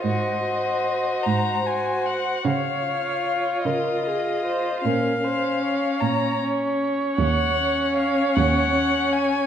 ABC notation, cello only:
X:1
M:6/8
L:1/8
Q:3/8=51
K:Db
V:1 name="Cello" clef=bass
A,,3 A,,3 | D,3 D,3 | B,,3 B,,3 | E,,3 E,,3 |]